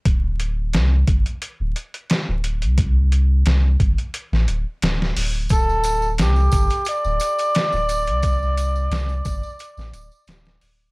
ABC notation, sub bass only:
X:1
M:4/4
L:1/16
Q:"Swing 16ths" 1/4=88
K:Cmix
V:1 name="Sub bass" clef=bass
D,,,4 C,,2 G,,, z2 D,,, z3 D,,,2 C,,- | C,,4 C,,2 G,,, z2 A,,, D,,, z D,,,2 D,,,2 | D,,,4 C,,2 G,,, z2 D,,, z3 D,,,2 C,,- | C,,4 C,,2 G,,, z2 A,,, D,,, z D,,,2 D,,,2 |]